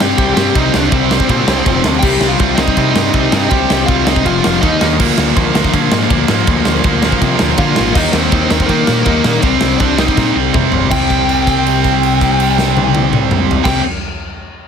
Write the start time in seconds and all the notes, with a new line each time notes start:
Already playing: C3 G3 C4
0.00 G2 G4 G5, snare
0.18 C2 C3 G3 C4, kick, ride
0.34 G2 C3 G3 C4 G4 G5, snare
0.55 C2 C3 G3 C4 D#4 D#5, kick, ride
0.73 C2 D4 D5, snare
0.89 C2 C3 G3 C5, kick, ride
0.93 C4
1.11 C3 G3 C4, snare
1.20 kick
1.29 A#2 C3 G3 C4, kick, ride
1.47 C2, snare
1.66 F1 F2 C3 F3, kick, ride
1.84 D2 F2 C3 F3, snare
1.99 C2 C3 G5, kick, crash
2.03 G3 C4 G4
2.20 C2, snare
2.28 F4 F5
2.39 C2 C3 G3 C4, kick, ride
2.55 C2 C3 D#5, snare
2.59 G3 C4 D#4
2.68 kick
2.76 C3 G3 C4, kick, ride
2.90 D#4 D#5
2.95 G2, snare
3.13 C2 C3 G3 C4, kick, ride
3.32 G2 C3 G3 C4, snare
3.49 C2 C3 G3 C4 G4 G5, kick, ride
3.70 C2, snare
3.86 C2 C3 G3 C4 F4 F5, kick, ride
4.05 C3 G3 C4 D#4 D#5, snare
4.16 kick
4.25 F1 F2 C3 F3 F4 F5, kick, ride
4.44 F1, snare
4.61 D#2 D#3 A#3 D#4 D#5, kick, ride
4.81 D#2 D#3 A#3 D#4, snare
5.00 D2 A#2 F3 A#3, kick, crash
5.18 D2, snare
5.36 D2 A#2 F3 A#3, kick, ride
5.54 D2 A#2 F3 A#3, snare
5.64 kick
5.73 A#2 D3 F3 A#3, kick, ride
5.92 G#2, snare
6.10 D2 A#2 F3 A#3, kick, ride
6.28 G#2 A#2 F3 A#3, snare
6.47 D2 A#2 F3 A#3, kick, ride
6.65 D2, snare
6.84 D2 A#2 F3 A#3, kick, ride
7.03 A#2 F3 A#3, snare
7.12 kick
7.21 A#2 C3 F3 A#3, kick, ride
7.39 D2, snare
7.58 A#2 D3 F3 A#3 F4 F5, kick, ride
7.76 G#1 A#2 F3 A#3, snare
7.94 D#2 D#3 A#3 D#4 D#5, kick, crash
8.12 D#2 C5, snare
8.16 C4
8.32 D#2 D#3 A#3 D#4, kick, ride
8.50 D#2 D#3 A#3 D#4, snare
8.60 kick
8.66 D#3 A#3 A#4, kick, ride
8.70 D#3 A#3 D#4
8.87 A#2, snare
9.03 D#2 A#4, kick, ride
9.07 D#3 A#3 D#4
9.24 A#2 D#3 A#3 D#4, snare
9.41 C2 C3 G3 C4 C5, kick, ride
9.46 C4
9.61 C2, snare
9.78 C2 C3 G3 C4 D4 D5, kick, ride
9.98 C3 G3 C4 D#4 D#5, snare
10.08 kick
10.17 A#2 C3 G3 C4, kick, snare
10.36 C2
10.54 C3 G3 C4, kick, mid tom
10.72 G1 C3 G3 C4, floor tom
10.90 C2 C3 G3 G5, kick, crash
10.94 C4
11.10 kick, crash
11.29 crash
11.47 kick, crash
11.66 crash
11.84 kick, crash
12.03 crash
12.21 kick, crash
12.40 crash
12.58 snare
12.77 high tom
12.95 high tom
13.13 mid tom
13.31 mid tom
13.51 floor tom
13.64 C2 C3 G3 C4 G5, kick, snare, crash